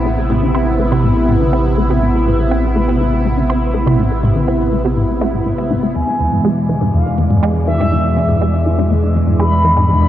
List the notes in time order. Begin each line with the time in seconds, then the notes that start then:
Already playing: A1 C3 B3 E4
0.05 A2
0.30 A2
0.42 D3
0.55 C4
0.79 A3
0.92 C3
1.04 A2
1.28 A2
1.41 D3
1.53 C4
1.78 A3
1.90 C3
2.02 A2
2.27 A2
2.39 D3
2.51 C4
2.76 A3
2.88 C3
3.00 A2
3.25 A2
3.37 D3
3.50 C4
3.74 A3
3.86 C3
3.99 A2
4.23 A2
4.36 D3
4.48 C4
4.73 A3
4.85 C3
4.97 A2
5.21 A3
5.34 A2
5.46 A2
5.71 A2
5.83 A3
5.95 E2 B2 E3 G#3 D4 D5 G#5
6.20 E2
6.32 G#2
6.45 G#3
6.69 E3
6.81 G#2
6.93 E2 F5
7.18 E2
7.31 G#2
7.43 G#3
7.67 E3 E5
7.80 G#2
7.92 E2
8.17 E2
8.29 G#2
8.41 G#3
8.66 E3
8.78 G#2
8.90 E2
9.15 E2
9.28 G#2
9.39 G#3 B5
9.64 E3
9.77 G#2
9.89 E2 B5